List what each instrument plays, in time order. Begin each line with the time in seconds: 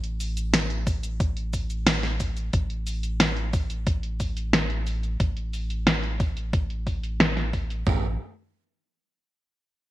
Already playing: analog synth bass A1
0.04 closed hi-hat
0.20 open hi-hat, cabasa
0.37 closed hi-hat, cabasa
0.54 snare, closed hi-hat, cabasa
0.70 closed hi-hat
0.87 kick, open hi-hat, cabasa
1.03 closed hi-hat, cabasa
1.20 kick, closed hi-hat, cabasa
1.37 closed hi-hat
1.53 kick, open hi-hat, cabasa
1.70 closed hi-hat, cabasa
1.87 snare, closed hi-hat, cabasa
2.03 snare, closed hi-hat
2.20 kick, open hi-hat, cabasa
2.37 closed hi-hat, cabasa
2.53 analog synth bass A1, kick, closed hi-hat, cabasa
2.70 closed hi-hat
2.87 open hi-hat, cabasa
3.03 closed hi-hat, cabasa
3.20 snare, closed hi-hat, cabasa
3.37 closed hi-hat
3.53 kick, open hi-hat, cabasa
3.70 closed hi-hat, cabasa
3.87 kick, closed hi-hat, cabasa
4.03 closed hi-hat
4.20 kick, open hi-hat, cabasa
4.37 closed hi-hat, cabasa
4.53 snare, closed hi-hat, cabasa
4.70 closed hi-hat
4.87 open hi-hat, cabasa
5.03 closed hi-hat, cabasa
5.20 analog synth bass A1, kick, closed hi-hat, cabasa
5.37 closed hi-hat
5.53 open hi-hat, cabasa
5.70 closed hi-hat, cabasa
5.87 snare, closed hi-hat, cabasa
6.03 closed hi-hat
6.20 kick, open hi-hat, cabasa
6.37 closed hi-hat, cabasa
6.53 kick, closed hi-hat, cabasa
6.70 closed hi-hat
6.87 kick, open hi-hat, cabasa
7.03 closed hi-hat, cabasa
7.20 snare, closed hi-hat, cabasa
7.37 snare, closed hi-hat
7.53 kick, open hi-hat, cabasa
7.70 closed hi-hat, cabasa
7.87 analog synth bass A1, kick, floor tom